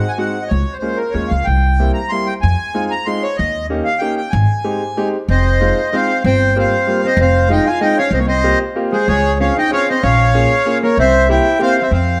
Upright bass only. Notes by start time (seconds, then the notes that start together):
0.51 C#2
1.14 D#2
1.31 C#2
1.47 C2
2.43 F2
3.39 D#2
4.33 G#1
5.28 F1
6.24 G1
7.17 F1
8.11 C2
9.08 C#2
10.03 A#1
10.97 C2
11.91 F2